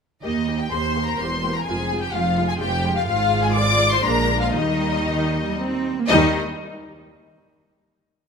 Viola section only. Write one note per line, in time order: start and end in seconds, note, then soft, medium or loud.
0.24 0.32 A#3 soft
0.24 0.32 G4 soft
0.48 0.56 A#3 soft
0.48 0.56 G4 soft
0.72 0.81 A#3 soft
0.72 0.80 G4 soft
0.96 1.04 A#3 soft
0.96 1.04 G4 soft
1.20 1.28 A#3 soft
1.20 1.29 G4 soft
1.44 1.52 A#3 soft
1.44 1.52 G4 soft
1.67 1.75 G#3 soft
1.67 1.76 F4 soft
1.91 1.99 G#3 soft
1.91 1.99 F4 soft
2.14 2.22 G#3 soft
2.14 2.22 F4 medium
2.37 2.46 G#3 soft
2.37 2.45 F4 soft
2.60 2.68 G#3 soft
2.60 2.68 F4 soft
2.84 2.92 G#3 medium
2.84 2.92 F4 soft
3.07 4.00 G#3 medium
3.07 4.00 F4 medium
4.04 4.53 G#3 medium
4.04 4.54 D4 medium
4.54 5.88 G3 medium
4.54 5.85 D#4 medium
6.10 6.38 G3 medium
6.10 6.38 D#4 medium